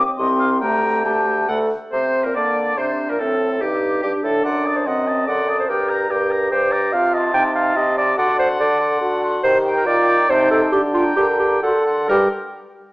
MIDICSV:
0, 0, Header, 1, 6, 480
1, 0, Start_track
1, 0, Key_signature, -2, "minor"
1, 0, Tempo, 433526
1, 682, Time_signature, 3, 2, 24, 8
1, 3086, Tempo, 415800
1, 10766, Tempo, 431965
1, 12686, Tempo, 454545
1, 14545, End_track
2, 0, Start_track
2, 0, Title_t, "Flute"
2, 0, Program_c, 0, 73
2, 202, Note_on_c, 0, 84, 68
2, 672, Note_off_c, 0, 84, 0
2, 681, Note_on_c, 0, 82, 88
2, 1169, Note_on_c, 0, 81, 66
2, 1186, Note_off_c, 0, 82, 0
2, 1653, Note_off_c, 0, 81, 0
2, 2125, Note_on_c, 0, 72, 45
2, 2501, Note_on_c, 0, 70, 35
2, 2517, Note_off_c, 0, 72, 0
2, 2602, Note_on_c, 0, 74, 47
2, 2618, Note_off_c, 0, 70, 0
2, 3087, Note_on_c, 0, 72, 40
2, 3104, Note_off_c, 0, 74, 0
2, 3439, Note_off_c, 0, 72, 0
2, 3445, Note_on_c, 0, 70, 43
2, 3572, Note_on_c, 0, 69, 47
2, 3589, Note_off_c, 0, 70, 0
2, 4033, Note_off_c, 0, 69, 0
2, 4040, Note_on_c, 0, 67, 48
2, 4507, Note_off_c, 0, 67, 0
2, 4514, Note_on_c, 0, 67, 37
2, 4746, Note_off_c, 0, 67, 0
2, 4753, Note_on_c, 0, 69, 42
2, 4822, Note_off_c, 0, 69, 0
2, 4998, Note_on_c, 0, 84, 36
2, 5246, Note_on_c, 0, 87, 33
2, 5264, Note_off_c, 0, 84, 0
2, 5477, Note_on_c, 0, 84, 37
2, 5494, Note_off_c, 0, 87, 0
2, 5729, Note_on_c, 0, 87, 33
2, 5746, Note_off_c, 0, 84, 0
2, 5964, Note_off_c, 0, 87, 0
2, 5970, Note_on_c, 0, 84, 34
2, 6208, Note_on_c, 0, 87, 40
2, 6226, Note_off_c, 0, 84, 0
2, 6431, Note_off_c, 0, 87, 0
2, 6438, Note_on_c, 0, 86, 39
2, 6675, Note_on_c, 0, 91, 35
2, 6692, Note_off_c, 0, 86, 0
2, 6915, Note_on_c, 0, 86, 37
2, 6932, Note_off_c, 0, 91, 0
2, 7160, Note_on_c, 0, 91, 31
2, 7178, Note_off_c, 0, 86, 0
2, 7385, Note_off_c, 0, 91, 0
2, 7392, Note_on_c, 0, 86, 36
2, 7633, Note_on_c, 0, 91, 43
2, 7650, Note_off_c, 0, 86, 0
2, 7875, Note_off_c, 0, 91, 0
2, 8129, Note_on_c, 0, 84, 41
2, 8570, Note_off_c, 0, 84, 0
2, 8576, Note_on_c, 0, 84, 41
2, 9057, Note_off_c, 0, 84, 0
2, 9063, Note_on_c, 0, 84, 43
2, 9298, Note_off_c, 0, 84, 0
2, 9305, Note_on_c, 0, 84, 46
2, 9527, Note_off_c, 0, 84, 0
2, 9533, Note_on_c, 0, 84, 42
2, 10014, Note_off_c, 0, 84, 0
2, 10020, Note_on_c, 0, 84, 41
2, 10505, Note_off_c, 0, 84, 0
2, 10511, Note_on_c, 0, 84, 50
2, 10758, Note_off_c, 0, 84, 0
2, 11015, Note_on_c, 0, 82, 47
2, 11478, Note_off_c, 0, 82, 0
2, 11487, Note_on_c, 0, 82, 40
2, 11716, Note_off_c, 0, 82, 0
2, 11722, Note_on_c, 0, 81, 41
2, 11951, Note_off_c, 0, 81, 0
2, 11957, Note_on_c, 0, 81, 48
2, 12192, Note_off_c, 0, 81, 0
2, 12442, Note_on_c, 0, 84, 43
2, 12483, Note_on_c, 0, 82, 46
2, 12494, Note_off_c, 0, 84, 0
2, 12918, Note_off_c, 0, 82, 0
2, 12936, Note_on_c, 0, 82, 40
2, 13170, Note_off_c, 0, 82, 0
2, 13184, Note_on_c, 0, 84, 41
2, 13421, Note_off_c, 0, 84, 0
2, 13428, Note_on_c, 0, 84, 39
2, 13663, Note_off_c, 0, 84, 0
2, 13672, Note_on_c, 0, 79, 52
2, 13931, Note_off_c, 0, 79, 0
2, 14545, End_track
3, 0, Start_track
3, 0, Title_t, "Oboe"
3, 0, Program_c, 1, 68
3, 197, Note_on_c, 1, 75, 64
3, 306, Note_off_c, 1, 75, 0
3, 438, Note_on_c, 1, 77, 54
3, 547, Note_off_c, 1, 77, 0
3, 674, Note_on_c, 1, 79, 60
3, 1153, Note_off_c, 1, 79, 0
3, 1160, Note_on_c, 1, 79, 54
3, 1638, Note_off_c, 1, 79, 0
3, 1646, Note_on_c, 1, 78, 49
3, 1757, Note_off_c, 1, 78, 0
3, 2123, Note_on_c, 1, 72, 50
3, 2476, Note_on_c, 1, 70, 34
3, 2493, Note_off_c, 1, 72, 0
3, 2593, Note_off_c, 1, 70, 0
3, 2599, Note_on_c, 1, 74, 48
3, 3072, Note_on_c, 1, 72, 46
3, 3089, Note_off_c, 1, 74, 0
3, 3442, Note_on_c, 1, 70, 35
3, 3460, Note_off_c, 1, 72, 0
3, 3553, Note_on_c, 1, 69, 50
3, 3570, Note_off_c, 1, 70, 0
3, 4037, Note_on_c, 1, 67, 47
3, 4054, Note_off_c, 1, 69, 0
3, 4508, Note_off_c, 1, 67, 0
3, 4515, Note_on_c, 1, 67, 50
3, 4625, Note_off_c, 1, 67, 0
3, 4769, Note_on_c, 1, 69, 44
3, 4994, Note_off_c, 1, 69, 0
3, 5001, Note_on_c, 1, 78, 42
3, 5244, Note_on_c, 1, 81, 36
3, 5262, Note_off_c, 1, 78, 0
3, 5484, Note_on_c, 1, 78, 39
3, 5502, Note_off_c, 1, 81, 0
3, 5724, Note_on_c, 1, 81, 34
3, 5741, Note_off_c, 1, 78, 0
3, 5965, Note_off_c, 1, 81, 0
3, 5971, Note_on_c, 1, 78, 38
3, 6202, Note_on_c, 1, 81, 33
3, 6219, Note_off_c, 1, 78, 0
3, 6428, Note_off_c, 1, 81, 0
3, 6435, Note_on_c, 1, 79, 39
3, 6666, Note_on_c, 1, 82, 35
3, 6684, Note_off_c, 1, 79, 0
3, 6920, Note_on_c, 1, 79, 39
3, 6937, Note_off_c, 1, 82, 0
3, 7148, Note_on_c, 1, 82, 39
3, 7165, Note_off_c, 1, 79, 0
3, 7377, Note_off_c, 1, 82, 0
3, 7384, Note_on_c, 1, 79, 41
3, 7620, Note_on_c, 1, 82, 38
3, 7638, Note_off_c, 1, 79, 0
3, 7868, Note_off_c, 1, 82, 0
3, 8104, Note_on_c, 1, 81, 44
3, 8566, Note_off_c, 1, 81, 0
3, 8573, Note_on_c, 1, 81, 43
3, 9055, Note_off_c, 1, 81, 0
3, 9066, Note_on_c, 1, 81, 43
3, 9296, Note_off_c, 1, 81, 0
3, 9303, Note_on_c, 1, 78, 52
3, 9538, Note_off_c, 1, 78, 0
3, 9545, Note_on_c, 1, 78, 51
3, 10020, Note_off_c, 1, 78, 0
3, 10028, Note_on_c, 1, 78, 45
3, 10509, Note_off_c, 1, 78, 0
3, 10518, Note_on_c, 1, 78, 46
3, 10762, Note_off_c, 1, 78, 0
3, 11007, Note_on_c, 1, 79, 53
3, 11474, Note_off_c, 1, 79, 0
3, 11481, Note_on_c, 1, 79, 46
3, 11715, Note_off_c, 1, 79, 0
3, 11720, Note_on_c, 1, 79, 56
3, 11946, Note_off_c, 1, 79, 0
3, 11953, Note_on_c, 1, 79, 47
3, 12190, Note_off_c, 1, 79, 0
3, 12436, Note_on_c, 1, 79, 49
3, 12911, Note_off_c, 1, 79, 0
3, 12918, Note_on_c, 1, 79, 43
3, 13161, Note_off_c, 1, 79, 0
3, 13167, Note_on_c, 1, 78, 44
3, 13413, Note_off_c, 1, 78, 0
3, 13421, Note_on_c, 1, 78, 37
3, 13653, Note_off_c, 1, 78, 0
3, 13659, Note_on_c, 1, 70, 55
3, 13858, Note_off_c, 1, 70, 0
3, 14545, End_track
4, 0, Start_track
4, 0, Title_t, "Clarinet"
4, 0, Program_c, 2, 71
4, 209, Note_on_c, 2, 67, 59
4, 676, Note_off_c, 2, 67, 0
4, 688, Note_on_c, 2, 67, 44
4, 1161, Note_off_c, 2, 67, 0
4, 1168, Note_on_c, 2, 67, 60
4, 1652, Note_on_c, 2, 69, 53
4, 1668, Note_off_c, 2, 67, 0
4, 1896, Note_off_c, 2, 69, 0
4, 2137, Note_on_c, 2, 72, 49
4, 2500, Note_on_c, 2, 70, 38
4, 2517, Note_off_c, 2, 72, 0
4, 2605, Note_off_c, 2, 70, 0
4, 2612, Note_on_c, 2, 74, 50
4, 3074, Note_off_c, 2, 74, 0
4, 3083, Note_on_c, 2, 72, 51
4, 3248, Note_off_c, 2, 72, 0
4, 3451, Note_on_c, 2, 70, 45
4, 3568, Note_on_c, 2, 69, 52
4, 3586, Note_off_c, 2, 70, 0
4, 4044, Note_on_c, 2, 67, 53
4, 4062, Note_off_c, 2, 69, 0
4, 4521, Note_off_c, 2, 67, 0
4, 4528, Note_on_c, 2, 67, 50
4, 4755, Note_on_c, 2, 69, 51
4, 4772, Note_off_c, 2, 67, 0
4, 4988, Note_on_c, 2, 74, 60
4, 5006, Note_off_c, 2, 69, 0
4, 5371, Note_on_c, 2, 72, 40
4, 5388, Note_off_c, 2, 74, 0
4, 5479, Note_on_c, 2, 75, 66
4, 5496, Note_off_c, 2, 72, 0
4, 5946, Note_off_c, 2, 75, 0
4, 5953, Note_on_c, 2, 74, 62
4, 6310, Note_off_c, 2, 74, 0
4, 6324, Note_on_c, 2, 72, 59
4, 6439, Note_on_c, 2, 70, 53
4, 6456, Note_off_c, 2, 72, 0
4, 6906, Note_off_c, 2, 70, 0
4, 6913, Note_on_c, 2, 67, 57
4, 7391, Note_on_c, 2, 72, 68
4, 7409, Note_off_c, 2, 67, 0
4, 7626, Note_on_c, 2, 74, 60
4, 7643, Note_off_c, 2, 72, 0
4, 7864, Note_on_c, 2, 77, 71
4, 7881, Note_off_c, 2, 74, 0
4, 8110, Note_on_c, 2, 75, 59
4, 8127, Note_off_c, 2, 77, 0
4, 8334, Note_off_c, 2, 75, 0
4, 8341, Note_on_c, 2, 79, 77
4, 8450, Note_off_c, 2, 79, 0
4, 8585, Note_on_c, 2, 77, 62
4, 8831, Note_on_c, 2, 75, 69
4, 8848, Note_off_c, 2, 77, 0
4, 9070, Note_off_c, 2, 75, 0
4, 9077, Note_on_c, 2, 74, 68
4, 9310, Note_off_c, 2, 74, 0
4, 9317, Note_on_c, 2, 74, 73
4, 9551, Note_off_c, 2, 74, 0
4, 9559, Note_on_c, 2, 72, 74
4, 9665, Note_off_c, 2, 72, 0
4, 9797, Note_on_c, 2, 74, 73
4, 10270, Note_off_c, 2, 74, 0
4, 10761, Note_on_c, 2, 72, 82
4, 10923, Note_off_c, 2, 72, 0
4, 11127, Note_on_c, 2, 70, 61
4, 11236, Note_on_c, 2, 74, 105
4, 11253, Note_off_c, 2, 70, 0
4, 11721, Note_on_c, 2, 72, 83
4, 11737, Note_off_c, 2, 74, 0
4, 11951, Note_off_c, 2, 72, 0
4, 11957, Note_on_c, 2, 69, 68
4, 12065, Note_off_c, 2, 69, 0
4, 12190, Note_on_c, 2, 67, 77
4, 12301, Note_off_c, 2, 67, 0
4, 12432, Note_on_c, 2, 65, 66
4, 12545, Note_off_c, 2, 65, 0
4, 12683, Note_on_c, 2, 67, 77
4, 12792, Note_off_c, 2, 67, 0
4, 12922, Note_on_c, 2, 67, 68
4, 13163, Note_off_c, 2, 67, 0
4, 13170, Note_on_c, 2, 69, 59
4, 13654, Note_off_c, 2, 69, 0
4, 13674, Note_on_c, 2, 67, 63
4, 13867, Note_off_c, 2, 67, 0
4, 14545, End_track
5, 0, Start_track
5, 0, Title_t, "French horn"
5, 0, Program_c, 3, 60
5, 203, Note_on_c, 3, 60, 55
5, 687, Note_on_c, 3, 57, 48
5, 703, Note_off_c, 3, 60, 0
5, 1158, Note_off_c, 3, 57, 0
5, 1164, Note_on_c, 3, 57, 45
5, 1641, Note_off_c, 3, 57, 0
5, 1647, Note_on_c, 3, 57, 44
5, 1889, Note_off_c, 3, 57, 0
5, 2128, Note_on_c, 3, 60, 41
5, 2610, Note_on_c, 3, 58, 33
5, 2626, Note_off_c, 3, 60, 0
5, 3068, Note_off_c, 3, 58, 0
5, 3074, Note_on_c, 3, 62, 38
5, 3555, Note_off_c, 3, 62, 0
5, 3566, Note_on_c, 3, 60, 36
5, 4036, Note_off_c, 3, 60, 0
5, 4047, Note_on_c, 3, 63, 42
5, 4526, Note_on_c, 3, 62, 42
5, 4543, Note_off_c, 3, 63, 0
5, 5486, Note_on_c, 3, 60, 40
5, 5504, Note_off_c, 3, 62, 0
5, 5962, Note_on_c, 3, 69, 47
5, 5979, Note_off_c, 3, 60, 0
5, 6433, Note_off_c, 3, 69, 0
5, 6440, Note_on_c, 3, 67, 46
5, 6910, Note_off_c, 3, 67, 0
5, 6916, Note_on_c, 3, 70, 45
5, 7381, Note_off_c, 3, 70, 0
5, 7388, Note_on_c, 3, 67, 54
5, 7874, Note_on_c, 3, 65, 47
5, 7891, Note_off_c, 3, 67, 0
5, 8330, Note_off_c, 3, 65, 0
5, 8337, Note_on_c, 3, 63, 48
5, 8825, Note_on_c, 3, 67, 57
5, 8842, Note_off_c, 3, 63, 0
5, 9315, Note_on_c, 3, 66, 50
5, 9332, Note_off_c, 3, 67, 0
5, 9793, Note_on_c, 3, 69, 54
5, 9811, Note_off_c, 3, 66, 0
5, 10265, Note_off_c, 3, 69, 0
5, 10272, Note_on_c, 3, 66, 60
5, 10763, Note_on_c, 3, 67, 61
5, 10779, Note_off_c, 3, 66, 0
5, 11241, Note_on_c, 3, 65, 60
5, 11257, Note_off_c, 3, 67, 0
5, 11571, Note_off_c, 3, 65, 0
5, 11709, Note_on_c, 3, 63, 57
5, 12198, Note_on_c, 3, 62, 59
5, 12214, Note_off_c, 3, 63, 0
5, 12684, Note_off_c, 3, 62, 0
5, 12690, Note_on_c, 3, 70, 64
5, 13162, Note_off_c, 3, 70, 0
5, 13169, Note_on_c, 3, 66, 50
5, 13281, Note_off_c, 3, 66, 0
5, 13661, Note_on_c, 3, 55, 51
5, 13859, Note_off_c, 3, 55, 0
5, 14545, End_track
6, 0, Start_track
6, 0, Title_t, "Bassoon"
6, 0, Program_c, 4, 70
6, 208, Note_on_c, 4, 36, 53
6, 687, Note_on_c, 4, 38, 51
6, 704, Note_off_c, 4, 36, 0
6, 1643, Note_off_c, 4, 38, 0
6, 1650, Note_on_c, 4, 38, 51
6, 1890, Note_off_c, 4, 38, 0
6, 2135, Note_on_c, 4, 48, 46
6, 2469, Note_off_c, 4, 48, 0
6, 2495, Note_on_c, 4, 46, 37
6, 2549, Note_off_c, 4, 46, 0
6, 2613, Note_on_c, 4, 50, 50
6, 3085, Note_on_c, 4, 48, 44
6, 3102, Note_off_c, 4, 50, 0
6, 3443, Note_on_c, 4, 46, 45
6, 3460, Note_off_c, 4, 48, 0
6, 3563, Note_on_c, 4, 45, 43
6, 3581, Note_off_c, 4, 46, 0
6, 4040, Note_on_c, 4, 43, 50
6, 4057, Note_off_c, 4, 45, 0
6, 4515, Note_off_c, 4, 43, 0
6, 4522, Note_on_c, 4, 43, 45
6, 4630, Note_off_c, 4, 43, 0
6, 4757, Note_on_c, 4, 45, 45
6, 4989, Note_off_c, 4, 45, 0
6, 4995, Note_on_c, 4, 42, 40
6, 5425, Note_off_c, 4, 42, 0
6, 5475, Note_on_c, 4, 42, 48
6, 5904, Note_off_c, 4, 42, 0
6, 5959, Note_on_c, 4, 42, 43
6, 6383, Note_off_c, 4, 42, 0
6, 6431, Note_on_c, 4, 43, 44
6, 6859, Note_off_c, 4, 43, 0
6, 6910, Note_on_c, 4, 43, 52
6, 7337, Note_off_c, 4, 43, 0
6, 7392, Note_on_c, 4, 43, 51
6, 7818, Note_off_c, 4, 43, 0
6, 7868, Note_on_c, 4, 48, 44
6, 8290, Note_off_c, 4, 48, 0
6, 8341, Note_on_c, 4, 48, 59
6, 8767, Note_off_c, 4, 48, 0
6, 8821, Note_on_c, 4, 48, 49
6, 9254, Note_off_c, 4, 48, 0
6, 9306, Note_on_c, 4, 50, 53
6, 9732, Note_off_c, 4, 50, 0
6, 9788, Note_on_c, 4, 50, 60
6, 10218, Note_off_c, 4, 50, 0
6, 10272, Note_on_c, 4, 50, 58
6, 10707, Note_off_c, 4, 50, 0
6, 10766, Note_on_c, 4, 51, 57
6, 11187, Note_off_c, 4, 51, 0
6, 11238, Note_on_c, 4, 51, 61
6, 11662, Note_off_c, 4, 51, 0
6, 11716, Note_on_c, 4, 48, 60
6, 12138, Note_off_c, 4, 48, 0
6, 12197, Note_on_c, 4, 50, 57
6, 12629, Note_off_c, 4, 50, 0
6, 12686, Note_on_c, 4, 50, 54
6, 13112, Note_off_c, 4, 50, 0
6, 13173, Note_on_c, 4, 50, 53
6, 13609, Note_off_c, 4, 50, 0
6, 13660, Note_on_c, 4, 43, 52
6, 13858, Note_off_c, 4, 43, 0
6, 14545, End_track
0, 0, End_of_file